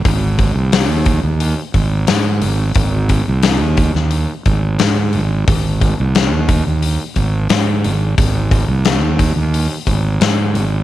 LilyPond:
<<
  \new Staff \with { instrumentName = "Fingered electric bass" } { \clef bass \time 4/4 \key aes \major \tempo 4 = 89 aes,,8. c,8 ees,8 ees,8 r16 aes,,8 aes,8 aes,,8 | aes,,8. c,8 ees,8 ees,8 r16 aes,,8 aes,8 aes,,8 | aes,,8. c,8 ees,8 ees,8 r16 aes,,8 aes,8 aes,,8 | aes,,8. c,8 ees,8 ees,8 r16 aes,,8 aes,8 aes,,8 | }
  \new DrumStaff \with { instrumentName = "Drums" } \drummode { \time 4/4 <hho bd>8 <hho bd>8 <hho sn>8 <hho bd>8 hho8 <hho bd>8 <hho sn>8 hho8 | <hho bd>8 <hho bd>8 <hho sn>8 <hho bd>16 sn16 hho8 <hho bd>8 <hho sn>8 hho8 | <hho bd>8 <hho bd>8 <hho sn>8 <hho bd>8 hho8 <hho bd>8 <hho sn>8 hho8 | <hho bd>8 <hho bd>8 <hho sn>8 <hho bd>8 hho8 <hho bd>8 <hho sn>8 hho8 | }
>>